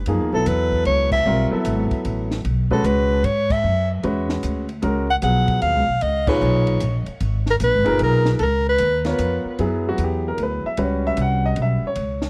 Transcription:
0.06 F#2 F3 A#3 D#4 G#4, ride
0.20 E2
0.33 B1 F#3 B3 E4 A4
0.46 E2 B4, hi-hat pedal, ride
0.72 kick
0.85 C#2 C#5, ride
1.12 E5, kick, crash
1.26 B1 G3 C4 F4 A#4
1.51 F#3 B3 E4 A4, muted upright bass stroke
1.65 G#1, hi-hat pedal, ride
1.91 muted upright bass stroke, kick, ride
2.05 A1, ride
2.31 snare
2.45 B1, ride
2.71 G#3 C#4 F#4 A4 B4, kick
2.84 C#2 B4, hi-hat pedal, ride
3.24 G#2 C#5, ride
3.50 E5, kick, crash
3.64 F#2
4.03 E2 G#3 C#4 F#4 B4, ride
4.30 snare
4.43 D2, hi-hat pedal, ride
4.69 ride
4.82 C#2 G#3 C#4 F#4 A#4, ride
5.10 F#5
5.22 B1 F3 F#3 B3 G#4 F#5, hi-hat pedal, ride
5.48 kick, ride
5.62 D#2 F5, ride
5.75 C#2
5.88 B1
6.01 C#2 D#5, ride
6.27 A#2 D#4 G#4 B4 C#5, kick, crash
6.41 B1, hi-hat pedal
6.67 ride
6.80 A#1, hi-hat pedal, ride
7.06 muted upright bass stroke, ride
7.20 G#1, ride
7.46 snare
7.50 A#4
7.60 A#1, hi-hat pedal, ride
7.64 B4
7.74 G#1
7.84 F#1 A#2 D#4 G#4 A#4, ride
7.99 B1, ride
8.03 A#4
8.25 snare
8.39 C#2 A4 A#4, ride
8.69 B4
8.78 D#2, hi-hat pedal, ride
9.05 B3 F4 A#4 C#5, snare, ride
9.19 F2, hi-hat pedal, ride
9.45 muted upright bass stroke
9.59 F#2 F#3 B3 E4 G#4, ride
9.89 F#4
9.98 E2, hi-hat pedal, ride
10.04 G4
10.28 A#4
10.38 D2, ride
10.43 B4
10.64 E5, muted upright bass stroke
10.77 C#2 G3 C#4 F#4 B4, ride
10.83 C#5
11.07 E5
11.17 C2, hi-hat pedal, ride
11.22 F#5
11.46 D#5
11.56 B1, ride
11.62 E5
11.83 muted upright bass stroke
11.87 C#5
11.95 C#2, ride
12.22 snare

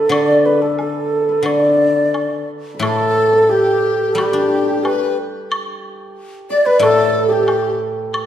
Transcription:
Already playing: A4 B4 D5 E5
0.09 D3 D5, high woodblock
0.46 B4
0.62 A4
0.79 A4, low woodblock
1.29 B4
1.43 D3 D5, high woodblock
2.14 high woodblock, low woodblock
2.74 B4
2.79 A2 A4, high woodblock
2.84 A4
3.33 A4
3.49 G4
4.11 G3 A4
4.16 G4, high woodblock
4.26 G4
4.32 D4 G4
4.41 G4
4.47 G4
4.53 G4
4.63 G4
4.71 G4
4.77 G4
4.84 G4 B4, high woodblock, low woodblock
4.92 G4
5.00 G4
5.52 high woodblock
6.50 D5
6.66 B4
6.79 A2 A4 B4, high woodblock
6.86 A4
7.27 G4 A4
7.31 G4
7.48 high woodblock, low woodblock
8.14 high woodblock

